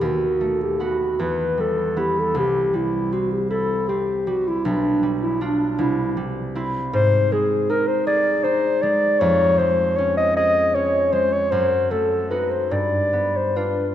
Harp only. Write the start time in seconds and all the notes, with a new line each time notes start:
Already playing: B3
0.01 D#2
0.41 A3
0.80 B3 F#4
1.19 E2
1.57 G3
1.96 B3 E4
2.35 C2
2.73 G3
3.12 C4
3.50 E4
3.89 C4
4.27 G3
4.65 B1
5.03 G3
5.41 D4 F4
5.79 C2
6.17 G3
6.55 C4 E4
6.93 G#2
7.32 G#3
7.70 D#4
8.07 G#4
8.44 D#4
8.83 G#3
9.21 F2
9.59 G#3
9.98 C#4
10.37 G#4
10.75 C#4
11.12 G#3
11.52 F#2
11.91 A3
12.30 D#4 F#4
12.71 G2
13.13 B3
13.56 D4 F4